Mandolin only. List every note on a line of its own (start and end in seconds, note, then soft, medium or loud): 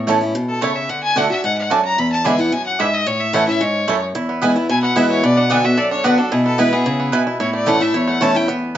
0.07 0.17 A3 medium
0.07 0.17 E4 medium
0.07 0.17 C#5 medium
0.07 0.17 A5 medium
0.61 0.71 A3 medium
0.61 0.71 E4 medium
0.61 0.71 C#5 loud
0.61 0.72 A5 medium
1.16 1.25 A3 medium
1.16 1.26 F#4 medium
1.16 1.26 D5 medium
1.16 1.26 A5 loud
1.70 1.80 A3 medium
1.70 1.80 F#4 medium
1.70 1.80 D5 medium
1.70 1.80 A5 medium
2.24 2.34 D4 medium
2.24 2.34 G#4 medium
2.24 2.34 E5 loud
2.24 2.34 B5 loud
2.79 2.88 D4 medium
2.79 2.89 G#4 medium
2.79 2.89 E5 loud
2.79 2.89 B5 medium
3.33 3.43 A3 medium
3.33 3.43 E4 medium
3.33 3.43 C#5 medium
3.33 3.43 A5 medium
3.87 3.97 A3 medium
3.87 3.97 E4 medium
3.87 3.97 C#5 loud
3.87 3.97 A5 loud
4.41 4.51 B3 medium
4.41 4.51 E4 medium
4.41 4.51 B4 medium
4.41 4.52 G#5 medium
4.95 5.05 B3 medium
4.95 5.05 E4 medium
4.95 5.05 B4 medium
4.95 5.06 G#5 loud
5.50 5.59 B3 medium
5.50 5.59 F#4 medium
5.50 5.60 D5 medium
5.50 5.60 F#5 loud
6.04 6.13 B3 medium
6.04 6.14 F#4 medium
6.04 6.14 D5 medium
6.04 6.14 F#5 loud
6.58 6.68 B3 medium
6.58 6.68 E4 medium
6.58 6.68 B4 medium
6.58 6.68 G#5 medium
7.12 7.22 B3 loud
7.12 7.22 E4 medium
7.12 7.22 B4 medium
7.12 7.22 G#5 loud
7.67 7.76 A3 medium
7.67 7.76 E4 medium
7.67 7.76 C#5 medium
7.67 7.77 A5 medium
8.21 8.30 A3 medium
8.21 8.30 E4 medium
8.21 8.31 C#5 loud
8.21 8.31 A5 medium